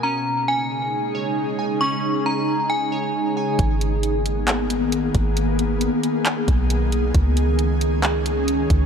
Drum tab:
HH |--------|--------|xxxxxxxx|xxxxxxxx|
CP |--------|--------|----x---|----x---|
BD |--------|--------|o------o|-----o--|

HH |xxxxxxxx|
CP |----x---|
BD |o------o|